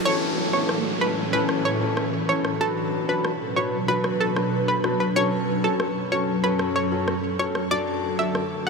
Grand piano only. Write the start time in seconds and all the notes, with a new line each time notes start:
0.05 E3 C#4 A4
0.53 E3 C#4 A4
1.01 E3 C#4 A4
1.33 E3 C#4 A4
1.81 E3 C#4 A4
2.29 E3 C#4 A4
2.60 F#3 D4 B4
3.08 F#3 D4 B4
3.56 F#3 D4 B4
3.88 F#3 D4 B4
4.36 F#3 D4 B4
4.84 F#3 D4 B4
5.16 F#3 C#4 A4
5.64 F#3 C#4 A4
6.12 F#3 C#4 A4
6.44 F#3 C#4 A4
6.92 F#3 C#4 A4
7.39 F#3 C#4 A4
7.71 F#3 D4 A4
8.19 F#3 D4 A4